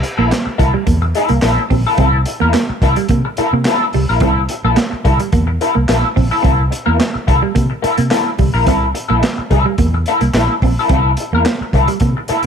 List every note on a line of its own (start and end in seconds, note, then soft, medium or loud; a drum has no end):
0.02 muted clean electric guitar stroke soft
0.02 closed hi-hat medium
0.18 0.30 A#1 medium
0.18 0.28 A#3 medium
0.18 0.29 A#3 medium
0.18 0.30 E4 medium
0.18 0.30 A4 medium
0.30 0.42 A#3 medium
0.30 muted clean electric guitar stroke soft
0.30 snare loud
0.30 clap medium
0.30 closed hi-hat medium
0.46 muted clean electric guitar stroke soft
0.46 muted fingered electric bass stroke soft
0.58 0.73 C2 medium
0.58 0.76 A#3 medium
0.58 0.74 E4 medium
0.58 0.73 A4 loud
0.58 muted clean electric guitar stroke soft
0.58 kick medium
0.58 closed hi-hat medium
0.74 0.83 G3 medium
0.74 muted clean electric guitar stroke medium
0.87 1.12 E2 medium
0.87 0.97 A#3 medium
0.87 kick loud
0.87 closed hi-hat medium
1.02 muted clean electric guitar stroke medium
1.15 1.36 A#3 medium
1.15 1.31 E4 medium
1.15 1.29 A4 loud
1.15 closed hi-hat medium
1.29 1.42 C2 medium
1.29 1.39 A#3 medium
1.29 muted clean electric guitar stroke soft
1.29 closed hi-hat soft
1.42 1.56 A#1 medium
1.42 1.60 A#3 medium
1.42 1.61 E4 medium
1.42 1.61 A4 loud
1.42 snare loud
1.42 clap medium
1.42 closed hi-hat medium
1.70 1.84 A#1 medium
1.70 1.81 C4 medium
1.70 muted clean electric guitar stroke medium
1.70 kick medium
1.70 open hi-hat medium
1.87 1.98 A#3 medium
1.87 1.99 E4 medium
1.87 1.98 A4 medium
1.98 2.23 C2 loud
1.98 2.17 A#3 medium
1.98 2.09 C4 medium
1.98 2.17 E4 medium
1.98 2.17 A4 medium
1.98 kick loud
1.98 closed hi-hat medium
2.26 muted clean electric guitar stroke soft
2.26 closed hi-hat medium
2.40 2.53 E2 medium
2.40 2.50 A#3 medium
2.40 2.54 A#3 medium
2.40 2.54 E4 medium
2.40 2.54 A#4 medium
2.53 2.64 A#3 medium
2.53 muted clean electric guitar stroke soft
2.53 snare loud
2.53 clap medium
2.53 closed hi-hat medium
2.69 muted clean electric guitar stroke soft
2.69 muted fingered electric bass stroke soft
2.82 2.95 C2 medium
2.82 3.00 A#3 medium
2.82 2.97 E4 medium
2.82 2.96 A4 loud
2.82 muted clean electric guitar stroke soft
2.82 kick loud
2.82 closed hi-hat medium
2.96 3.06 G3 medium
2.96 muted clean electric guitar stroke soft
2.96 closed hi-hat medium
3.09 3.23 C3 medium
3.09 3.21 A#3 loud
3.09 kick loud
3.09 closed hi-hat medium
3.25 muted clean electric guitar stroke medium
3.37 3.55 A#3 medium
3.37 3.53 E4 loud
3.37 3.52 A4 loud
3.37 muted clean electric guitar stroke soft
3.37 muted fingered electric bass stroke soft
3.37 closed hi-hat medium
3.53 3.64 C3 loud
3.53 3.62 A#3 medium
3.53 muted clean electric guitar stroke soft
3.65 3.83 A#3 medium
3.65 3.84 E4 medium
3.65 3.84 A4 loud
3.65 snare loud
3.65 clap medium
3.65 closed hi-hat loud
3.93 4.07 C2 loud
3.93 4.04 G3 medium
3.93 muted clean electric guitar stroke soft
3.93 open hi-hat medium
4.09 4.21 A#1 medium
4.09 4.21 A#3 soft
4.09 4.21 E4 medium
4.09 4.21 A#4 medium
4.20 4.46 C2 loud
4.20 4.39 A#3 medium
4.20 4.32 C4 medium
4.20 4.40 E4 medium
4.20 4.40 A4 loud
4.20 kick loud
4.20 closed hi-hat medium
4.49 muted clean electric guitar stroke soft
4.49 closed hi-hat medium
4.64 4.76 A#1 loud
4.64 4.73 A#3 medium
4.64 4.76 A#3 medium
4.64 4.77 E4 medium
4.64 4.77 A4 medium
4.77 4.87 A#3 medium
4.77 muted clean electric guitar stroke soft
4.77 snare loud
4.77 clap medium
4.77 closed hi-hat medium
4.91 muted clean electric guitar stroke soft
4.91 muted fingered electric bass stroke soft
5.05 5.18 C2 medium
5.05 5.22 A#3 medium
5.05 5.18 E4 medium
5.05 5.18 A4 loud
5.05 muted clean electric guitar stroke soft
5.05 kick loud
5.05 closed hi-hat medium
5.19 5.29 G3 medium
5.19 muted clean electric guitar stroke soft
5.19 closed hi-hat medium
5.32 5.57 E2 medium
5.32 5.43 A#3 medium
5.32 kick loud
5.32 closed hi-hat medium
5.47 muted clean electric guitar stroke medium
5.61 5.78 A#3 medium
5.61 5.74 E4 medium
5.61 5.74 A4 medium
5.61 closed hi-hat medium
5.75 5.87 C2 medium
5.75 5.84 A#3 medium
5.75 muted clean electric guitar stroke soft
5.89 6.02 A#1 medium
5.89 6.06 A#3 medium
5.89 6.06 E4 loud
5.89 6.06 A4 loud
5.89 snare loud
5.89 clap medium
5.89 closed hi-hat loud
6.16 6.30 A#1 medium
6.16 6.26 C4 medium
6.16 muted clean electric guitar stroke medium
6.16 kick medium
6.16 open hi-hat medium
6.31 6.42 A#3 soft
6.31 6.43 E4 medium
6.31 6.43 A4 medium
6.43 6.69 C2 loud
6.43 6.61 A#3 medium
6.43 6.53 C4 medium
6.43 6.61 E4 medium
6.43 6.61 A4 medium
6.43 kick loud
6.43 closed hi-hat medium
6.71 muted clean electric guitar stroke soft
6.71 closed hi-hat medium
6.86 6.99 E2 medium
6.86 6.95 A#3 medium
6.86 6.97 A#3 medium
6.86 6.98 E4 medium
6.86 6.98 A#4 medium
6.98 7.10 A#3 medium
6.98 muted clean electric guitar stroke soft
6.98 snare loud
6.98 clap medium
6.98 closed hi-hat medium
7.14 muted clean electric guitar stroke soft
7.14 muted fingered electric bass stroke soft
7.27 7.41 C2 medium
7.27 7.45 A#3 medium
7.27 7.42 E4 medium
7.27 7.41 A4 loud
7.27 muted clean electric guitar stroke soft
7.27 kick medium
7.27 closed hi-hat medium
7.42 7.51 G3 medium
7.42 muted clean electric guitar stroke medium
7.55 7.69 C3 loud
7.55 7.65 A#3 medium
7.55 kick loud
7.55 closed hi-hat medium
7.70 muted clean electric guitar stroke soft
7.82 8.00 A#3 medium
7.82 7.98 E4 medium
7.82 7.97 A4 loud
7.82 muted clean electric guitar stroke soft
7.82 muted fingered electric bass stroke soft
7.82 closed hi-hat medium
7.98 8.10 C3 loud
7.98 8.07 A#3 medium
7.98 muted clean electric guitar stroke soft
7.98 closed hi-hat medium
8.11 8.28 A#3 medium
8.11 8.28 E4 medium
8.11 8.29 A4 loud
8.11 snare loud
8.11 clap medium
8.11 closed hi-hat loud
8.38 8.52 C2 medium
8.38 8.49 G3 medium
8.38 muted clean electric guitar stroke soft
8.38 kick medium
8.38 open hi-hat medium
8.54 8.67 A#1 medium
8.54 8.67 A#3 medium
8.54 8.66 E4 medium
8.54 8.66 A#4 medium
8.67 8.92 C2 loud
8.67 8.85 A#3 medium
8.67 8.77 C4 medium
8.67 8.85 E4 medium
8.67 8.85 A4 medium
8.67 kick loud
8.67 closed hi-hat loud
8.95 muted clean electric guitar stroke soft
8.95 closed hi-hat medium
9.09 9.21 A#1 loud
9.09 9.21 A#3 medium
9.09 9.19 A#3 medium
9.09 9.21 E4 medium
9.09 9.21 A4 medium
9.23 9.33 A#3 medium
9.23 muted clean electric guitar stroke soft
9.23 snare loud
9.23 clap medium
9.23 closed hi-hat medium
9.38 muted clean electric guitar stroke soft
9.38 muted fingered electric bass stroke soft
9.50 9.64 C2 medium
9.50 9.71 A#3 medium
9.50 9.65 E4 medium
9.50 9.64 A4 medium
9.50 muted clean electric guitar stroke soft
9.50 kick medium
9.50 closed hi-hat medium
9.66 9.75 G3 medium
9.66 muted clean electric guitar stroke soft
9.78 10.03 E2 loud
9.78 9.89 A#3 medium
9.78 kick loud
9.78 closed hi-hat medium
9.94 muted clean electric guitar stroke medium
10.06 10.25 A#3 medium
10.06 10.23 E4 medium
10.06 10.22 A4 medium
10.06 closed hi-hat medium
10.21 10.33 C2 medium
10.21 10.30 A#3 medium
10.21 muted clean electric guitar stroke soft
10.21 closed hi-hat medium
10.34 10.47 A#1 medium
10.34 10.52 A#3 medium
10.34 10.53 E4 loud
10.34 10.53 A4 medium
10.34 snare loud
10.34 clap loud
10.34 closed hi-hat medium
10.62 10.75 A#1 medium
10.62 10.73 C4 medium
10.62 muted clean electric guitar stroke medium
10.62 kick medium
10.62 open hi-hat medium
10.79 10.91 A#3 medium
10.79 10.91 E4 medium
10.79 10.90 A4 medium
10.89 11.14 C2 loud
10.89 11.09 A#3 medium
10.89 11.00 C4 medium
10.89 11.09 E4 medium
10.89 kick loud
10.89 closed hi-hat loud
10.94 11.09 A4 medium
11.17 muted clean electric guitar stroke soft
11.17 closed hi-hat medium
11.33 11.44 E2 loud
11.33 11.42 A#3 medium
11.33 11.46 A#3 medium
11.33 11.46 E4 medium
11.33 11.46 A#4 medium
11.45 11.56 A#3 medium
11.45 muted clean electric guitar stroke soft
11.45 snare loud
11.45 clap loud
11.45 closed hi-hat medium
11.61 muted fingered electric bass stroke soft
11.61 muted clean electric guitar stroke soft
11.73 11.87 C2 medium
11.73 11.91 A#3 medium
11.73 11.89 E4 medium
11.73 11.88 A4 medium
11.73 muted clean electric guitar stroke soft
11.73 kick loud
11.73 closed hi-hat medium
11.88 11.97 G3 medium
11.88 muted clean electric guitar stroke soft
11.88 closed hi-hat medium
12.00 12.14 C3 loud
12.00 12.12 A#3 medium
12.00 kick medium
12.00 closed hi-hat medium
12.17 muted clean electric guitar stroke soft
12.28 12.46 A#3 medium
12.28 12.43 E4 medium
12.28 12.43 A4 loud
12.28 muted clean electric guitar stroke soft
12.28 muted fingered electric bass stroke medium
12.28 closed hi-hat medium
12.43 closed hi-hat medium